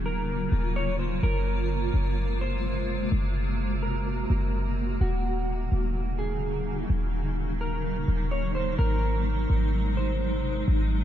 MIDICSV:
0, 0, Header, 1, 4, 480
1, 0, Start_track
1, 0, Tempo, 472441
1, 1251, Time_signature, 4, 2, 24, 8
1, 11218, End_track
2, 0, Start_track
2, 0, Title_t, "Clean electric guitar"
2, 0, Program_c, 0, 27
2, 58, Note_on_c, 0, 70, 82
2, 733, Note_off_c, 0, 70, 0
2, 775, Note_on_c, 0, 73, 91
2, 1001, Note_off_c, 0, 73, 0
2, 1008, Note_on_c, 0, 72, 83
2, 1237, Note_off_c, 0, 72, 0
2, 1253, Note_on_c, 0, 70, 112
2, 2411, Note_off_c, 0, 70, 0
2, 2452, Note_on_c, 0, 72, 83
2, 3130, Note_off_c, 0, 72, 0
2, 3886, Note_on_c, 0, 70, 77
2, 5048, Note_off_c, 0, 70, 0
2, 5092, Note_on_c, 0, 66, 94
2, 6251, Note_off_c, 0, 66, 0
2, 6286, Note_on_c, 0, 68, 79
2, 6968, Note_off_c, 0, 68, 0
2, 7731, Note_on_c, 0, 70, 83
2, 8410, Note_off_c, 0, 70, 0
2, 8447, Note_on_c, 0, 73, 83
2, 8677, Note_off_c, 0, 73, 0
2, 8686, Note_on_c, 0, 72, 91
2, 8916, Note_off_c, 0, 72, 0
2, 8926, Note_on_c, 0, 70, 114
2, 10087, Note_off_c, 0, 70, 0
2, 10132, Note_on_c, 0, 72, 83
2, 10810, Note_off_c, 0, 72, 0
2, 11218, End_track
3, 0, Start_track
3, 0, Title_t, "Ambient pad"
3, 0, Program_c, 1, 92
3, 0, Note_on_c, 1, 49, 89
3, 0, Note_on_c, 1, 54, 77
3, 0, Note_on_c, 1, 58, 75
3, 0, Note_on_c, 1, 65, 90
3, 1212, Note_off_c, 1, 49, 0
3, 1212, Note_off_c, 1, 54, 0
3, 1249, Note_on_c, 1, 48, 83
3, 1249, Note_on_c, 1, 56, 75
3, 3132, Note_off_c, 1, 65, 0
3, 3171, Note_on_c, 1, 66, 97
3, 5051, Note_off_c, 1, 48, 0
3, 5051, Note_off_c, 1, 56, 0
3, 5071, Note_off_c, 1, 66, 0
3, 5089, Note_on_c, 1, 49, 83
3, 5089, Note_on_c, 1, 54, 77
3, 5090, Note_on_c, 1, 63, 93
3, 8889, Note_off_c, 1, 58, 0
3, 8891, Note_off_c, 1, 49, 0
3, 8930, Note_on_c, 1, 48, 85
3, 8930, Note_on_c, 1, 56, 77
3, 11218, Note_off_c, 1, 48, 0
3, 11218, Note_off_c, 1, 54, 0
3, 11218, Note_off_c, 1, 56, 0
3, 11218, Note_off_c, 1, 63, 0
3, 11218, End_track
4, 0, Start_track
4, 0, Title_t, "808-style bass"
4, 0, Program_c, 2, 38
4, 0, Note_on_c, 2, 27, 115
4, 489, Note_off_c, 2, 27, 0
4, 530, Note_on_c, 2, 27, 105
4, 1221, Note_off_c, 2, 27, 0
4, 1250, Note_on_c, 2, 30, 118
4, 1941, Note_off_c, 2, 30, 0
4, 1970, Note_on_c, 2, 30, 103
4, 3130, Note_off_c, 2, 30, 0
4, 3170, Note_on_c, 2, 30, 118
4, 4329, Note_off_c, 2, 30, 0
4, 4370, Note_on_c, 2, 30, 104
4, 5061, Note_off_c, 2, 30, 0
4, 5090, Note_on_c, 2, 27, 117
4, 5781, Note_off_c, 2, 27, 0
4, 5811, Note_on_c, 2, 27, 102
4, 6970, Note_off_c, 2, 27, 0
4, 7010, Note_on_c, 2, 27, 123
4, 8169, Note_off_c, 2, 27, 0
4, 8210, Note_on_c, 2, 27, 100
4, 8901, Note_off_c, 2, 27, 0
4, 8930, Note_on_c, 2, 32, 122
4, 9622, Note_off_c, 2, 32, 0
4, 9650, Note_on_c, 2, 32, 106
4, 10810, Note_off_c, 2, 32, 0
4, 10850, Note_on_c, 2, 32, 115
4, 11218, Note_off_c, 2, 32, 0
4, 11218, End_track
0, 0, End_of_file